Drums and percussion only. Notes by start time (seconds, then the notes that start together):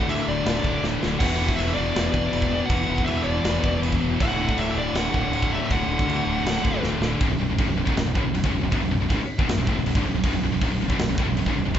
0.09 china
0.46 snare, china
0.64 kick
0.84 snare
1.03 snare
1.20 kick, china, crash
1.49 kick
1.59 china
1.96 snare, china
2.14 kick
2.33 china
2.42 kick
2.70 kick, china
2.98 kick
3.08 china
3.45 snare, china
3.64 kick
3.83 china
3.92 kick
4.20 kick, china
4.49 kick
4.58 china
4.95 snare, china
5.14 kick
5.33 china
5.42 kick
5.70 kick, china
5.99 kick
6.09 china
6.46 snare, china
6.65 kick
6.84 snare
7.02 snare
7.21 kick, crash
7.59 kick, crash
7.87 kick
7.97 snare, crash
8.15 kick
8.35 crash
8.44 kick
8.72 kick, crash
9.10 kick, crash
9.39 kick
9.49 snare, crash
9.67 kick
9.86 crash
9.95 kick
10.24 kick, crash
10.62 kick, crash
10.90 kick
10.99 snare, crash
11.18 kick
11.37 crash
11.46 kick
11.75 kick, crash